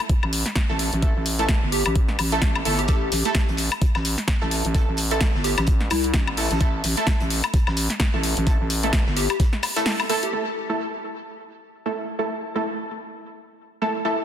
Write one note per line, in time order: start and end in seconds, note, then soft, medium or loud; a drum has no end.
0.00 0.66 A3 medium
0.00 0.66 E4 medium
0.00 0.66 A4 loud
0.09 kick loud
0.09 closed hi-hat medium
0.23 0.44 A1 loud
0.23 high woodblock medium
0.33 open hi-hat loud
0.46 snare soft
0.46 closed hi-hat medium
0.55 kick loud
0.55 snare loud
0.55 closed hi-hat medium
0.69 0.91 A1 loud
0.69 1.00 A3 medium
0.69 1.00 E4 medium
0.69 1.00 A4 medium
0.79 open hi-hat loud
0.93 1.14 A1 medium
0.93 closed hi-hat medium
1.02 1.25 A3 medium
1.02 1.25 E4 medium
1.02 1.25 A4 medium
1.02 kick loud
1.02 closed hi-hat medium
1.16 1.60 A1 loud
1.26 open hi-hat loud
1.39 1.51 A3 medium
1.39 1.51 E4 medium
1.39 1.51 A4 loud
1.39 closed hi-hat soft
1.49 kick loud
1.49 snare loud
1.49 closed hi-hat medium
1.62 1.84 G1 loud
1.72 1.81 G4 medium
1.72 open hi-hat loud
1.86 2.17 A1 loud
1.86 1.92 G4 medium
1.86 closed hi-hat soft
1.86 high woodblock medium
1.96 kick loud
1.96 closed hi-hat medium
2.08 snare soft
2.19 2.40 A1 loud
2.19 open hi-hat loud
2.19 high woodblock medium
2.32 2.63 A3 loud
2.32 2.63 E4 medium
2.32 2.63 A4 loud
2.32 closed hi-hat medium
2.42 2.64 A1 loud
2.42 kick loud
2.42 snare loud
2.42 closed hi-hat medium
2.55 high woodblock medium
2.65 2.87 G1 loud
2.65 2.80 A3 medium
2.65 2.80 E4 medium
2.65 2.80 A4 loud
2.65 open hi-hat loud
2.79 3.43 G4 medium
2.79 closed hi-hat soft
2.88 3.10 A1 medium
2.88 3.04 A3 medium
2.88 3.04 E4 medium
2.88 3.04 A4 loud
2.88 kick loud
2.88 closed hi-hat medium
3.12 3.23 A1 medium
3.12 closed hi-hat medium
3.12 open hi-hat loud
3.25 4.38 A3 medium
3.25 4.38 E4 medium
3.25 4.38 A4 loud
3.25 closed hi-hat soft
3.35 kick loud
3.35 snare loud
3.35 closed hi-hat medium
3.48 3.70 A1 loud
3.48 closed hi-hat soft
3.57 closed hi-hat medium
3.57 open hi-hat loud
3.72 closed hi-hat soft
3.72 high woodblock medium
3.82 kick loud
3.82 closed hi-hat medium
3.95 4.16 A1 loud
3.95 snare soft
3.95 high woodblock medium
4.05 closed hi-hat medium
4.05 open hi-hat loud
4.18 snare soft
4.18 closed hi-hat medium
4.28 kick loud
4.28 snare loud
4.28 closed hi-hat medium
4.41 4.63 A1 loud
4.41 4.72 A3 medium
4.41 4.72 E4 medium
4.41 4.72 A4 medium
4.51 closed hi-hat medium
4.51 open hi-hat loud
4.65 4.86 A1 medium
4.65 closed hi-hat medium
4.75 4.97 A3 medium
4.75 4.97 E4 medium
4.75 4.97 A4 medium
4.75 kick loud
4.75 closed hi-hat medium
4.88 5.32 A1 loud
4.97 closed hi-hat medium
4.97 open hi-hat loud
5.11 5.24 A3 medium
5.11 5.24 E4 medium
5.11 5.24 A4 loud
5.11 closed hi-hat medium
5.21 kick medium
5.21 snare loud
5.21 closed hi-hat medium
5.34 5.56 G1 medium
5.34 snare soft
5.44 5.53 G4 medium
5.44 snare soft
5.44 closed hi-hat medium
5.44 open hi-hat loud
5.58 5.89 A1 medium
5.58 5.64 G4 medium
5.58 snare soft
5.58 closed hi-hat medium
5.58 high woodblock medium
5.67 kick loud
5.67 closed hi-hat loud
5.67 closed hi-hat medium
5.80 snare soft
5.90 6.13 C2 loud
5.90 6.27 E4 loud
5.90 closed hi-hat medium
5.90 open hi-hat loud
5.90 high woodblock medium
6.04 closed hi-hat medium
6.14 6.49 A1 medium
6.14 kick loud
6.14 snare loud
6.14 closed hi-hat medium
6.27 high woodblock medium
6.37 6.53 A3 medium
6.37 6.53 E4 medium
6.37 6.53 A4 loud
6.37 open hi-hat loud
6.37 open hi-hat medium
6.51 6.59 A1 medium
6.51 closed hi-hat medium
6.61 6.82 A1 loud
6.61 6.76 A3 medium
6.61 6.76 E4 medium
6.61 6.76 A4 loud
6.61 kick loud
6.61 closed hi-hat medium
6.84 6.95 A1 loud
6.84 closed hi-hat medium
6.84 open hi-hat loud
6.97 8.10 A3 medium
6.97 8.10 E4 medium
6.97 8.10 A4 loud
6.97 closed hi-hat medium
7.07 kick loud
7.07 snare loud
7.07 closed hi-hat medium
7.20 7.42 A1 loud
7.20 closed hi-hat soft
7.30 closed hi-hat medium
7.30 open hi-hat loud
7.43 closed hi-hat soft
7.43 high woodblock medium
7.54 kick loud
7.54 closed hi-hat medium
7.67 7.88 A1 loud
7.67 snare soft
7.67 high woodblock medium
7.77 closed hi-hat medium
7.77 open hi-hat loud
7.90 snare soft
7.90 closed hi-hat medium
8.00 kick loud
8.00 snare loud
8.00 closed hi-hat medium
8.14 8.35 A1 loud
8.14 8.44 A3 medium
8.14 8.44 E4 medium
8.14 8.44 A4 medium
8.23 closed hi-hat medium
8.23 open hi-hat loud
8.37 8.58 A1 medium
8.37 closed hi-hat medium
8.47 8.69 A3 medium
8.47 8.69 E4 medium
8.47 8.69 A4 medium
8.47 kick loud
8.47 closed hi-hat medium
8.60 9.04 A1 loud
8.70 closed hi-hat medium
8.70 open hi-hat loud
8.83 8.96 A3 medium
8.83 8.96 E4 medium
8.83 8.96 A4 loud
8.83 closed hi-hat medium
8.93 kick loud
8.93 snare loud
8.93 closed hi-hat medium
9.06 9.28 G1 loud
9.06 snare medium
9.16 9.25 G4 medium
9.16 snare soft
9.16 closed hi-hat medium
9.16 open hi-hat loud
9.30 9.36 G4 medium
9.30 snare soft
9.30 closed hi-hat medium
9.30 high woodblock medium
9.40 kick loud
9.40 snare loud
9.40 closed hi-hat medium
9.53 snare soft
9.63 snare medium
9.63 closed hi-hat medium
9.63 open hi-hat loud
9.63 high woodblock medium
9.76 10.07 A3 loud
9.76 10.07 E4 medium
9.76 10.07 A4 loud
9.76 snare loud
9.76 closed hi-hat medium
9.86 snare loud
9.86 closed hi-hat medium
9.86 open hi-hat medium
10.00 closed hi-hat soft
10.00 high woodblock medium
10.09 10.25 A3 loud
10.09 10.25 E4 medium
10.09 10.25 A4 loud
10.09 open hi-hat loud
10.23 10.33 G4 medium
10.23 closed hi-hat medium
10.33 10.48 A3 medium
10.33 10.48 E4 medium
10.33 10.48 A4 loud
10.69 11.82 A3 medium
10.69 11.82 E4 medium
10.69 11.82 A4 loud
11.86 12.16 A3 medium
11.86 12.16 E4 medium
11.86 12.16 A4 medium
12.19 12.41 A3 medium
12.19 12.41 E4 medium
12.19 12.41 A4 medium
12.55 12.68 A3 medium
12.55 12.68 E4 medium
12.55 12.68 A4 medium
13.82 13.97 A3 medium
13.82 13.97 E4 medium
13.82 13.97 A4 medium
14.05 14.20 A3 medium
14.05 14.20 E4 medium
14.05 14.20 A4 loud